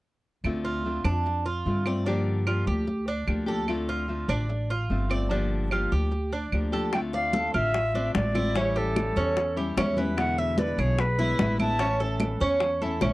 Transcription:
0.44 D2 D3 A3 C4 F4, claves
0.65 F4
0.84 D3 A3 C4 F4
1.04 F2 D4, claves
1.26 muted nylon-string guitar stroke
1.46 F4
1.66 G2 D3 A3 C4 F4
1.86 A3 C4 F4 D5, claves
2.06 D3 F3 A#3 D4 G4
2.47 F3 A#3 D4 F4 G4, claves
2.67 D2 G4
2.87 muted nylon-string guitar stroke
3.08 D4
3.27 D2 F3 A#3 D4 G4, claves
3.46 F3 A#3 D4 G4 A4
3.68 D3 A3 C4 F4, claves
3.89 F4
4.08 D3 A3 C4 F4
4.28 A1 D4, claves
4.49 muted nylon-string guitar stroke
4.70 F4
4.90 G1 D3 A3 C4 F4
5.09 A3 C4 F4 D5, claves
5.30 D3 F3 A#3 D4 G4
5.71 F3 A#3 D4 F4 G4, claves
5.92 D2 G4
6.11 muted nylon-string guitar stroke
6.33 D4
6.52 D2 F3 A#3 D4 G4, claves
6.72 F3 A#3 D4 G4 A4
6.93 D3 A3 C4 F4 G5, high bongo, high conga, claves
7.13 D5 F5, high bongo, high conga
7.33 A4, high bongo, high conga
7.54 A1 F4 E5, high conga, claves
7.74 muted nylon-string guitar stroke, high bongo, high conga
7.94 A3 C4 D4 F4, high bongo, high conga
8.14 A1 D3 A3 C4 F4 D5, high bongo, low bongo, high conga
8.34 A3 C4 E4 F4, high bongo, high conga, claves
8.54 E3 G3 C#4 E4 C#5, high bongo, high conga
8.76 G4 A4, high bongo, high conga
8.96 high bongo, high conga, claves
9.16 E2 C#4, high bongo, high conga
9.36 muted nylon-string guitar stroke, high bongo, high conga
9.57 G3 C#4 E4 G4, high conga
9.77 E2 E3 G3 C#4 E4, high bongo, low bongo, high conga, claves
9.97 G3 C#4 E4 B4, high bongo, high conga
10.17 B2 D3 G#3 B3 E4 F#5, high bongo, high conga, claves
10.38 E5, high bongo, high conga
10.58 B4 D5, high bongo, high conga
10.78 B1 G#4 C#5, high conga, claves
10.99 B4, muted nylon-string guitar stroke, high bongo, high conga
11.19 D3 G#3 B3 E4, high bongo, high conga
11.39 A1 D3 G#3 B3 E4, high bongo, low bongo, high conga
11.59 D3 G#3 B3 E4 A5, high bongo, high conga, claves
11.79 E3 A3 C#4 E4, high bongo, high conga
12.00 A4, high bongo, high conga
12.20 high bongo, high conga, claves
12.40 E2 C#4, high bongo, high conga
12.60 muted nylon-string guitar stroke, high bongo, high conga
12.81 A3 C#4 E4 A4, high conga
13.01 A#1 E3 A3 C#4 E4, high bongo, high conga, claves

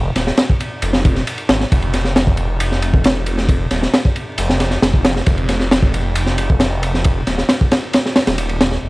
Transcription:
Already playing: F1
0.16 D#1, snare, ride
0.27 snare
0.37 snare, ride
0.50 kick
0.60 ride
0.82 F1, ride
0.93 snare
1.05 kick, ride
1.15 snare
1.27 ride
1.38 ride
1.49 G#1, snare, ride
1.61 snare
1.72 F1, kick, ride
1.82 ride
1.93 snare, ride
2.05 snare
2.16 snare, ride
2.27 kick
2.37 ride
2.60 ride
2.72 snare
2.82 ride
2.94 kick
3.04 snare, ride
3.26 ride
3.38 snare
3.49 kick, ride
3.71 D#1, snare, ride
3.83 snare
3.94 snare, ride
4.05 kick
4.16 ride
4.38 F1, ride
4.49 snare
4.60 snare, ride
4.71 snare
4.82 F1, snare, ride
4.94 kick
5.05 snare, ride
5.16 snare
5.26 F1, kick, ride
5.38 ride
5.49 snare, ride
5.60 snare
5.71 snare, ride
5.82 kick
5.94 ride
6.15 ride
6.26 snare
6.38 ride
6.50 kick
6.60 snare, ride
6.83 ride
6.94 snare
7.04 kick, ride
7.27 D#1, snare, ride
7.38 snare
7.49 snare, ride
7.61 kick
7.71 snare, ride
7.93 snare, ride
8.06 snare
8.16 snare, ride
8.27 D#1, snare, ride
8.38 ride
8.49 ride
8.61 snare, ride
8.72 snare
8.83 F1

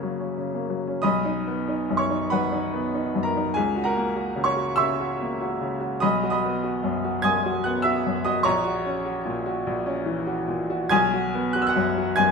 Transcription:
Already playing: F#2 C#3 F#3 A#3 C#4 C#5 D#5
0.03 F#3
0.20 C#4
0.38 C#3
0.54 A#3
0.70 F#3
0.87 C#4
1.02 B1 D#5 B5 D#6
1.25 D#4
1.47 B3
1.68 D#4
1.90 F#2
1.97 C#5 C#6
2.10 D#4
2.30 F#2 B4 F#5 B5
2.52 D#4
2.73 B3
2.94 D#4
3.15 F#2
3.23 A#4 A#5
3.36 D#4
3.54 C#2 G#4 G#5
3.76 F#4
3.84 A#4 F#5 A#5
3.96 A#3
4.16 F#4
4.36 C#3
4.44 C#5 C#6
4.56 F#4
4.76 C#3 E5 C#6 E6
5.00 F#4
5.21 A#3
5.41 F#4
5.61 C#3
5.81 F#4
6.00 B1 D#5 B5 D#6
6.23 F#4
6.30 D#5 B5 D#6
6.44 B3
6.64 F#4
6.83 F#2
7.04 F#4
7.22 F#2 G#5 D#6 G#6
7.46 F#4
7.64 B3 F#5 F#6
7.82 F#4 E5 E6
8.07 F#2
8.25 F#4 D#5 D#6
8.43 A#1 C#5 A#5 C#6
8.65 F#4
8.86 C#4
9.06 F#4
9.25 A#2
9.46 F#4
9.67 A#1
9.86 C#4
10.06 E3
10.27 F#4
10.48 A#2
10.70 F#4
10.89 B1 G#5 D#6 G#6
11.14 F#4
11.35 B3
11.53 F#4 F#6
11.62 E6
11.67 F#5 F#6
11.76 F#2
11.98 F#4
12.16 F#2 G#5 G#6

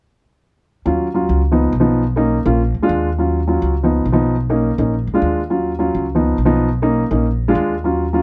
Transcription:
0.85 D#2 F#3 C#4 F4
1.14 F#3 C#4 F4
1.29 C#2
1.52 F3 B3 D#4
1.73 B1
1.80 F3 B3 D#4
2.16 A#3 C#4 D#4
2.45 A#1 A#3 C#4 F4
2.74 D2
2.82 G#3 D4 F4
2.89 D#2
3.18 F#3 C#4 F4
3.47 F#3 C#4 F4
3.62 C#2
3.83 F3 B3 D#4
4.06 B1
4.12 F3 B3 D#4
4.50 A#3 C#4 D#4
4.78 A#1 A#3 C#4 D#4
5.07 D2
5.14 G#3 D4 F4
5.22 D#2
5.50 F#3 C#4 F4
5.79 F#3 C#4 F4
5.95 C#2
6.15 F3 B3 D#4
6.38 B1
6.45 F3 B3 D#4
6.82 A#3 C#4 D#4
7.11 A#1 A#3 C#4 D#4
7.48 G#3 D4 F4
7.55 D#2
7.84 F#3 C#4 F4
8.13 F#3 C#4 F4

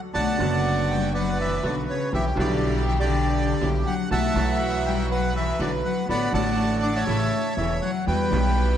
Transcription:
0.14 B1 B2 D3 F#3 A3 B3 D4 F#4 D5 F#5 A5
0.38 F#1 F#2 D3 F#3 B3 D4 F#4
0.91 G3 G5
1.14 F#3 B4 D5 F#5
1.41 E3 E5
1.62 B1 B2 D3 F#3 B3 D4 F#4 D5
1.90 C#3 C#5
2.12 B1 B2 D3 E3 G3 B3 E4 G4 E5
2.35 B1 B2 D3 G3 B3 E4 G4
2.39 D5
2.88 E3 E5
3.00 D3 G4 D5
3.61 B1 B2 D3 G3 B3 E4 G4
3.86 F#3 F#5
4.11 B1 B2 E3 F#3 A3 B3 E4 F#4 E5 F#5 A5
4.33 B1 B2 E3 F#3 B3 E4 F#4
4.37 F#4
4.86 G3 G5
5.11 F#3 B4 F#5
5.35 E3 E5
5.59 B1 B2 D3 E3 F#3 B3 E4 F#4 D5
5.84 F#3 F#5
6.08 A1 A2 D3 F#3 A3 B3 D4 F#4 D5 F#5 B5
6.31 A1 A2 D3 F#3 A3 D4 F#4 D5 F#5 A5
6.35 F#4
6.83 D4 D6
6.96 A3 C#5 E5 A5
7.06 A1 A2 C#3 E3 A3 C#4 E4
7.57 E1 E2 C#3 E3 A3 C#4 E4 E5
7.82 F#3 F#5
8.06 E2 E3 G3 B3 E4 F#4 B4 G5
8.30 B1 B2 E3 G3 B3 E4 G4

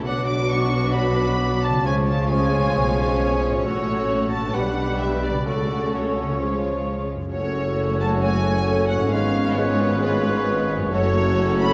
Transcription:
Already playing: B2 D4
0.00 F#4 B4
0.05 B1 B2 F#3 D4 F#4 B4 F#5 D6
0.28 D6
0.51 C#6
0.94 F#3 F#4 B5 D6
1.64 A5
1.69 C#3
1.73 C#4
1.78 F4
1.85 C#2 C#3 F3 G#3 C#4 F4 G#4 C#5 G#5 C#6
2.08 A5
2.31 F3 G#4 G#5 C#6
2.58 B2
2.63 C#4
2.68 F4
2.75 B1 B2 F3 G#4 C#6
3.48 A2
3.53 C#4
3.57 F#4
3.61 A1 F#3 A3 F#4 A4 C#5 C#6
3.66 A2
4.32 A5
4.37 B2
4.42 D4
4.46 G4
4.51 G4 B4 F#5
4.55 B1 B2 G3 D4 B4 B5
5.00 E5
5.24 D5
5.30 C#3
5.34 C#4
5.39 F#4
5.43 A3 C#4 A4 D5
5.47 C#2 C#3 F#3 F#4 A4 C#6
5.94 F#3 A4 C#5 C#6
6.23 C#3
6.28 C#4
6.32 F4
6.37 F3 G#4
6.41 G#3 F4 G#4 C#5 C#6
7.15 F#2
7.19 C#4
7.24 F#4
7.28 F#2 F#3 A4 C#5
7.32 F#1 A3 C#4 F#4 A4 C#5
8.00 A5
8.23 G#5
8.89 F#5
8.95 G#2
9.00 C#4
9.04 F4
9.09 G#1 G#2 B3 B4 F5
9.13 G#1 G#3 F4 B4 C#5 F5
9.56 G#3 B4 C#5
10.02 G#3 B4 C#5
10.76 F#2
10.80 C#4
10.85 F#4
10.89 F#1 F#2 A3 F#4 A4 C#5
10.94 F#3 C#4 F#4 A4 C#5
11.61 B5

